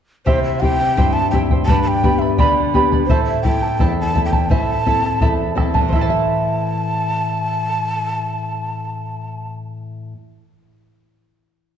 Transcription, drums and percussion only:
0.27 bombo low medium
0.62 bombo low soft
0.98 bombo low medium
1.33 bombo low medium
1.50 bombo low medium
1.68 bombo low medium
2.03 bombo low medium
2.38 bombo low medium
2.74 bombo low medium
2.92 bombo low soft
3.09 bombo low medium
3.45 bombo low medium
3.79 bombo low medium
4.15 bombo low soft
4.32 bombo low medium
4.50 bombo low medium
4.87 bombo low soft
5.21 bombo low medium
5.58 bombo rim soft
5.58 bombo low soft
5.75 bombo low medium
5.92 bombo low medium

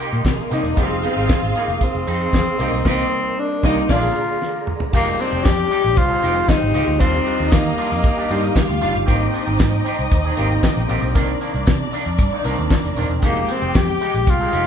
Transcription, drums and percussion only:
0.00 tambourine medium
0.12 closed hi-hat soft
0.25 kick loud
0.25 snare medium
0.25 clap medium
0.25 tambourine medium
0.38 snare soft
0.38 closed hi-hat soft
0.51 closed hi-hat medium
0.51 tambourine medium
0.64 closed hi-hat soft
0.77 kick loud
0.77 closed hi-hat medium
0.77 tambourine soft
1.03 closed hi-hat medium
1.03 tambourine soft
1.17 closed hi-hat soft
1.29 kick loud
1.29 snare loud
1.29 clap medium
1.29 tambourine medium
1.42 closed hi-hat soft
1.55 closed hi-hat medium
1.55 tambourine soft
1.69 closed hi-hat soft
1.81 kick loud
1.81 closed hi-hat medium
1.94 closed hi-hat soft
2.07 closed hi-hat medium
2.07 tambourine medium
2.21 closed hi-hat soft
2.33 kick loud
2.33 snare loud
2.33 clap medium
2.33 tambourine medium
2.59 closed hi-hat medium
2.59 tambourine medium
2.73 closed hi-hat soft
2.85 kick loud
2.85 snare loud
2.85 crash medium
3.63 kick loud
3.63 snare medium
3.89 kick loud
3.89 snare loud
3.89 crash medium
4.42 snare medium
4.67 mid tom medium
4.80 floor tom medium
4.93 kick loud
4.93 crash medium
4.93 tambourine soft
5.19 closed hi-hat medium
5.19 tambourine soft
5.32 closed hi-hat soft
5.45 kick loud
5.45 snare loud
5.45 clap loud
5.45 tambourine medium
5.71 closed hi-hat medium
5.71 tambourine soft
5.85 closed hi-hat medium
5.96 kick loud
5.96 closed hi-hat medium
5.96 tambourine soft
6.22 closed hi-hat medium
6.22 tambourine medium
6.36 closed hi-hat soft
6.48 kick loud
6.48 snare loud
6.48 clap medium
6.48 tambourine loud
6.74 closed hi-hat medium
6.74 tambourine medium
6.87 closed hi-hat medium
7.00 kick loud
7.00 closed hi-hat medium
7.00 tambourine soft
7.13 closed hi-hat soft
7.26 closed hi-hat medium
7.39 closed hi-hat soft
7.52 kick loud
7.52 snare loud
7.52 clap loud
7.52 tambourine medium
7.78 closed hi-hat medium
7.78 tambourine medium
7.91 closed hi-hat medium
8.03 kick loud
8.03 closed hi-hat medium
8.30 closed hi-hat medium
8.30 tambourine medium
8.43 closed hi-hat soft
8.56 kick loud
8.56 snare loud
8.56 clap medium
8.56 tambourine loud
8.69 snare soft
8.69 closed hi-hat soft
8.81 closed hi-hat medium
8.81 tambourine medium
8.95 closed hi-hat medium
9.08 kick loud
9.08 closed hi-hat medium
9.08 tambourine soft
9.21 closed hi-hat soft
9.34 closed hi-hat medium
9.34 tambourine soft
9.47 closed hi-hat soft
9.59 kick loud
9.59 snare loud
9.59 clap loud
9.59 tambourine medium
9.72 closed hi-hat soft
9.85 closed hi-hat medium
9.85 tambourine medium
9.99 closed hi-hat medium
10.11 kick loud
10.11 closed hi-hat medium
10.11 tambourine soft
10.25 closed hi-hat soft
10.37 closed hi-hat medium
10.37 tambourine medium
10.50 closed hi-hat soft
10.63 kick loud
10.63 snare loud
10.63 clap medium
10.63 tambourine loud
10.75 snare soft
10.75 closed hi-hat soft
10.89 closed hi-hat medium
10.89 tambourine medium
11.02 closed hi-hat medium
11.15 kick loud
11.15 closed hi-hat medium
11.15 tambourine medium
11.41 closed hi-hat medium
11.41 tambourine soft
11.54 closed hi-hat soft
11.67 kick loud
11.67 snare loud
11.67 clap medium
11.67 tambourine medium
11.93 open hi-hat medium
11.93 tambourine medium
12.06 closed hi-hat medium
12.18 kick loud
12.18 closed hi-hat medium
12.18 tambourine soft
12.44 closed hi-hat medium
12.44 tambourine medium
12.57 closed hi-hat medium
12.70 kick loud
12.70 snare loud
12.70 clap medium
12.70 tambourine medium
12.84 snare soft
12.84 closed hi-hat soft
12.96 open hi-hat medium
12.96 tambourine medium
13.09 closed hi-hat medium
13.22 kick loud
13.22 closed hi-hat medium
13.22 tambourine soft
13.36 closed hi-hat soft
13.48 closed hi-hat medium
13.48 tambourine soft
13.62 closed hi-hat soft
13.74 kick loud
13.74 snare loud
13.74 clap loud
13.74 tambourine medium
14.01 closed hi-hat medium
14.01 tambourine medium
14.15 closed hi-hat medium
14.26 kick loud
14.26 closed hi-hat medium
14.26 tambourine soft
14.41 closed hi-hat soft
14.52 closed hi-hat medium
14.52 tambourine medium

